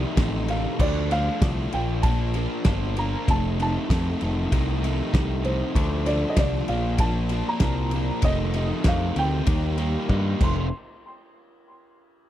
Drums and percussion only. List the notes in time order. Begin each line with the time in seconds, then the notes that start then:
0.17 kick, snare, ride
0.48 ride
0.79 kick, crash
1.11 ride
1.42 kick, snare, ride
1.73 ride
2.03 kick, ride
2.34 ride
2.65 kick, snare, ride
2.97 ride
3.28 kick, ride
3.60 ride
3.90 kick, snare, ride
4.21 ride
4.52 kick, ride
4.84 ride
5.14 kick, snare, ride
5.45 ride
5.75 kick, ride
6.06 ride
6.37 kick, snare, ride
6.68 ride
6.98 kick, ride
7.29 ride
7.60 kick, snare, ride
7.91 ride
8.22 kick, ride
8.54 ride
8.84 kick, snare, ride
9.16 ride
9.46 kick, ride
9.78 ride
10.09 kick
10.41 kick, crash